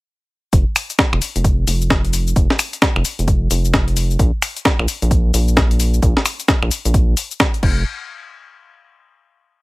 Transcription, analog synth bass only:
0.53 0.65 F1 loud
1.13 1.20 F1 loud
1.36 1.65 F1 medium
1.68 2.34 F1 medium
2.36 2.48 F1 loud
2.96 3.04 F1 loud
3.19 3.49 F1 medium
3.51 4.17 F1 medium
4.19 4.31 A#1 loud
4.79 4.87 A#1 loud
5.02 5.32 A#1 medium
5.34 6.00 A#1 medium
6.03 6.15 A#1 loud
6.63 6.70 A#1 loud
6.85 7.15 A#1 medium
7.63 7.84 F1 loud

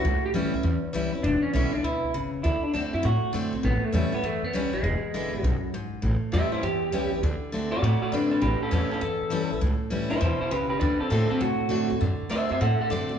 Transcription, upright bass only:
0.05 0.18 C#2 loud
0.24 muted upright bass stroke medium
0.34 0.48 A1 medium
0.53 0.61 C#2 medium
0.64 0.78 E2 medium
0.84 muted upright bass stroke medium
0.95 1.08 C#2 medium
1.14 1.21 G1 medium
1.24 1.37 E1 loud
1.43 muted upright bass stroke medium
1.54 1.68 B1 medium
1.74 muted upright bass stroke medium
1.84 1.97 D2 medium
2.03 2.11 C#2 medium
2.14 2.28 G#1 medium
2.34 2.41 E1 medium
2.45 2.58 D2 loud
2.64 muted upright bass stroke medium
2.75 2.88 D2 medium
2.94 3.01 F#2 loud
3.05 3.18 A2 medium
3.24 muted upright bass stroke medium
3.34 3.48 F#2 medium
3.53 3.61 C2 medium
3.64 3.78 A1 loud
3.83 muted upright bass stroke medium
3.94 4.07 E2 medium
4.12 muted upright bass stroke medium
4.23 4.37 G2 medium
4.42 4.50 F#2 loud
4.53 4.67 C#2 medium
4.73 4.80 A1 medium
4.83 4.97 E1 loud
5.02 muted upright bass stroke medium
5.13 5.27 E1 medium
5.32 5.40 G#1 loud
5.43 5.57 B1 loud
5.62 muted upright bass stroke medium
5.73 5.87 G#1 medium
5.93 6.00 G#1 medium
6.03 6.17 A1 loud
6.23 muted upright bass stroke medium
6.34 6.47 E2 medium
6.53 muted upright bass stroke medium
6.63 6.77 G2 loud
6.93 7.07 C#2 medium
7.12 7.19 A1 medium
7.23 7.36 D2 loud
7.42 muted upright bass stroke medium
7.53 7.67 D2 loud
7.72 7.79 F#2 loud
7.82 7.96 A2 medium
8.02 muted upright bass stroke medium
8.13 8.26 F#2 medium
8.31 8.39 G1 medium
8.42 8.56 A1 loud
8.62 muted upright bass stroke medium
8.72 8.86 E2 medium
8.92 muted upright bass stroke medium
9.02 9.16 G2 loud
9.21 9.29 F#2 medium
9.32 9.45 C#2 medium
9.52 9.59 A1 medium
9.62 9.76 C#2 loud
9.81 muted upright bass stroke medium
9.92 10.06 A1 medium
10.11 10.19 C#2 loud
10.22 10.35 E2 medium
10.41 muted upright bass stroke medium
10.51 10.65 C#2 medium
10.71 10.79 G1 medium
10.81 10.95 D2 loud
11.01 muted upright bass stroke medium
11.11 11.25 A2 medium
11.31 muted upright bass stroke medium
11.41 11.55 C3 loud
11.60 11.68 B2 medium
11.72 11.85 F#2 medium
11.91 11.98 D2 medium
12.01 12.15 F#2 loud
12.21 muted upright bass stroke medium
12.31 12.45 D2 medium
12.51 12.58 F#2 medium
12.61 12.75 A2 medium
12.81 muted upright bass stroke medium
12.91 13.05 F#2 medium
13.10 13.18 G#1 medium

